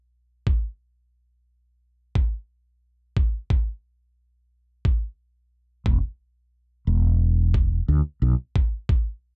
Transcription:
0.47 kick
2.15 kick
3.17 kick
3.50 kick
4.85 kick
5.86 fretless electric bass E1, kick
6.87 fretless electric bass E1
7.54 kick
7.88 fretless electric bass D2
8.22 fretless electric bass B1
8.56 kick
8.89 kick

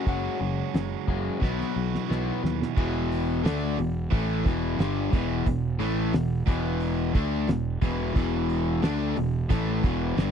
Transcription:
Already playing: overdriven electric guitar F#3 G#3 C#4 F#4
0.07 fingered electric bass F#1, overdriven electric guitar F#2 C#3 F#3, electric slide guitar F#5, kick, open hi-hat
0.41 fingered electric bass F#1, overdriven electric guitar F#2 C#3
0.74 fingered electric bass F#1, overdriven electric guitar F#2 C#3, snare, open hi-hat
1.07 fingered electric bass F#1, overdriven electric guitar F#2 C#3 F#3, kick
1.41 fingered electric bass B1, overdriven electric guitar B2 E3 F#3 B3 E4 F#4, kick, snare
1.61 snare
1.76 fingered electric bass B1, overdriven electric guitar B2 F#3
1.95 snare
2.09 fingered electric bass B1, overdriven electric guitar B2 F#3 B3, snare
2.43 fingered electric bass D#2, overdriven electric guitar B2 F#3, snare
2.62 snare
2.77 fingered electric bass E1, overdriven electric guitar E2 B2 E3, kick, crash
3.12 snare, open hi-hat
3.44 fingered electric bass D2, overdriven electric guitar D3 A3 D4, snare, open hi-hat
3.78 fingered electric bass E1, overdriven electric guitar E2 B2, open hi-hat
4.11 fingered electric bass A1, overdriven electric guitar A2 E3 A3, kick, open hi-hat
4.45 fingered electric bass E1, overdriven electric guitar E2 B2 E3, kick, open hi-hat
4.79 fingered electric bass G1, overdriven electric guitar G2 D3 G3, snare, open hi-hat
5.12 fingered electric bass E1, overdriven electric guitar E2 B2 E3, kick, open hi-hat
5.46 fingered electric bass E1, overdriven electric guitar E2 B2, kick, open hi-hat
5.79 fingered electric bass A1, overdriven electric guitar A2 E3 A3, snare, open hi-hat
6.13 fingered electric bass E1, overdriven electric guitar E2 B2, snare, open hi-hat
6.47 fingered electric bass E1, overdriven electric guitar E2 B2 E3, kick, open hi-hat
6.80 open hi-hat
7.13 fingered electric bass D2, overdriven electric guitar D3 A3 D4, kick, open hi-hat
7.48 fingered electric bass E1, overdriven electric guitar E2 B2, snare, open hi-hat
7.82 fingered electric bass E1, overdriven electric guitar E2 B2 E3, kick, open hi-hat
8.15 fingered electric bass E1, overdriven electric guitar E2 B2 E3, kick, open hi-hat
8.50 open hi-hat
8.82 fingered electric bass D2, overdriven electric guitar D3 A3 D4, snare, open hi-hat
9.16 fingered electric bass E1, overdriven electric guitar E2 B2, open hi-hat
9.50 fingered electric bass A1, overdriven electric guitar A2 E3 A3, kick, open hi-hat
9.83 fingered electric bass E1, overdriven electric guitar E2 B2 E3, kick, open hi-hat
10.17 fingered electric bass G1, overdriven electric guitar G2 D3 G3, snare, open hi-hat

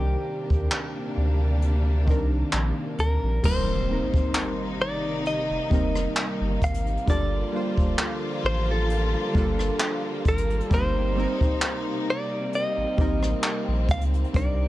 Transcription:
Already playing: sub bass C2, string section A#2 C3 G3 A#3 D4, synth keys D#3 C4 D4 A#4, clean electric guitar G4
0.50 sub bass D#2, kick
0.71 clap
1.17 sub bass D2
1.62 closed hi-hat
2.06 sub bass C2, synth keys D#3 C4 D4, kick
2.10 synth keys A#4
2.53 sub bass A#1, clap, closed hi-hat
2.98 sub bass D2, clean electric guitar A#4, closed hi-hat
3.23 sub bass A#1
3.43 sub bass D#1, string section C3 D#3 G3 A#3 D#4, synth keys G3 A#3 C4 D#4, clean electric guitar C5, kick, crash, impact
3.47 synth keys A#4
3.88 synth keys G3 A#3 C4 D#4
3.93 synth keys A#4
4.14 sub bass F1, kick
4.34 clap, closed hi-hat
4.82 clean electric guitar D5
5.26 clean electric guitar D#5, closed hi-hat
5.50 sub bass F1
5.70 sub bass F1, synth keys G3 A#3 C4 D#4, kick
5.74 synth keys A#4
5.95 cross-stick
6.16 clap, closed hi-hat
6.41 sub bass G1
6.62 sub bass G#1, clean electric guitar F5, kick, closed hi-hat
6.74 closed hi-hat
6.87 closed hi-hat
6.97 closed hi-hat
7.06 sub bass G1, string section D3 F3 F4, synth keys G3 A#3 D4 F4, clean electric guitar D5, kick, closed hi-hat
7.11 synth keys A4
7.52 synth keys G3 A#3 D4 F4
7.56 synth keys C5
7.77 sub bass F1, kick
7.98 clap, closed hi-hat
8.44 sub bass A1, clean electric guitar C5
8.71 clean electric guitar A4
8.90 closed hi-hat
9.33 sub bass G1, synth keys G3 A#3 D4 F4, kick
9.38 synth keys A4
9.59 cross-stick
9.80 clap, closed hi-hat
10.25 sub bass G#1, clean electric guitar A#4, kick, closed hi-hat
10.38 closed hi-hat
10.50 closed hi-hat
10.60 clean electric guitar A4, closed hi-hat
10.70 sub bass G1, string section C3 D#4, synth keys G3 A#3 C4 D#4, kick, closed hi-hat
10.74 synth keys A#4, clean electric guitar C5
11.15 synth keys G3 A#3 C4 D#4
11.20 synth keys A#4
11.41 sub bass A1, kick
11.62 clap, closed hi-hat
12.10 clean electric guitar D5
12.53 string section C4, clean electric guitar D#5, closed hi-hat
12.77 sub bass A1
12.97 sub bass A1, synth keys G3 A#3 C4 D#4, kick
13.01 synth keys A#4
13.23 cross-stick
13.43 clap, closed hi-hat
13.68 sub bass A#1
13.88 sub bass C#2, clean electric guitar F5, kick, closed hi-hat
14.01 closed hi-hat
14.14 closed hi-hat
14.24 closed hi-hat
14.33 sub bass C2, string section C3, synth keys G3 C4 D4 D#4, clean electric guitar D5, kick, closed hi-hat
14.38 synth keys A#4

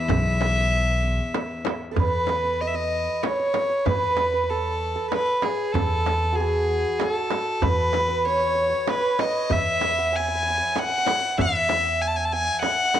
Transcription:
Already playing: cello section E2, violin E5
0.08 upright bass B1, frame drum, tombak dum
0.41 tombak tek, frame drum
0.56 tombak ka
0.72 tombak ka
1.03 tombak ka
1.19 tombak ka
1.34 tombak tek, frame drum
1.65 tombak tek, frame drum
1.91 santur A4
1.96 upright bass E2, violin B4, santur B4, frame drum, tombak dum
2.27 tombak tek, frame drum
2.45 tombak ka
2.61 violin D#5, santur D#5
2.67 violin E5
2.74 santur D#5, violin D#5
3.22 violin C#5, santur C#5, tombak tek, frame drum
3.30 santur C#5
3.39 santur C#5
3.46 santur C#5
3.54 santur C#5, tombak tek, frame drum
3.64 santur C#5
3.69 santur C#5
3.85 upright bass E2, violin B4, santur B4, frame drum, tombak dum
3.95 santur B4
4.03 santur B4
4.11 santur B4
4.17 santur B4, tombak tek, frame drum
4.26 santur B4
4.33 santur B4, tombak ka
4.43 santur B4
4.50 violin A4, santur A4
4.96 santur A4
5.12 violin B4, santur B4, tombak tek, frame drum
5.42 violin G#4, santur G#4, tombak tek, frame drum
5.72 upright bass E2, violin A4, santur A4, frame drum, tombak dum
6.06 tombak tek, frame drum
6.23 tombak ka
6.32 santur F#4, violin G#4
6.40 santur G#4
6.99 violin G#4, santur A4, tombak tek, frame drum
7.10 violin A4
7.30 tombak tek, frame drum
7.62 upright bass E2, santur B4, violin B4, tombak dum, frame drum
7.93 tombak tek, frame drum
8.08 santur B4, tombak ka
8.25 violin C#5, santur C#5, tombak ka
8.32 santur C#5
8.40 santur C#5
8.47 santur C#5
8.55 santur C#5, tombak ka
8.62 santur C#5
8.70 santur C#5, tombak ka
8.87 santur B4, violin B4, tombak tek, frame drum
8.94 santur C#5
9.00 santur B4
9.19 santur D#5, violin D#5, tombak tek, frame drum
9.50 upright bass E2, santur E5, violin E5, frame drum, tombak dum
9.81 tombak tek, frame drum
9.98 santur F#5, tombak ka
10.13 santur G#5, violin G#5
10.20 santur G#5
10.28 santur G#5
10.35 santur G#5
10.43 santur G#5
10.50 santur G#5
10.58 santur G#5
10.76 santur F#5, violin F#5, tombak tek, frame drum
10.89 santur F#5
10.98 santur F#5
11.07 tombak tek, frame drum
11.21 santur F#5
11.38 upright bass E2, santur E5, violin E5, frame drum, tombak dum
11.69 tombak tek, frame drum
11.85 tombak ka
12.02 violin G#5
12.08 violin A5
12.16 violin G#5
12.25 violin A5
12.33 violin G#5, santur G#5
12.62 violin F#5, santur F#5, tombak tek, frame drum
12.94 tombak tek, frame drum

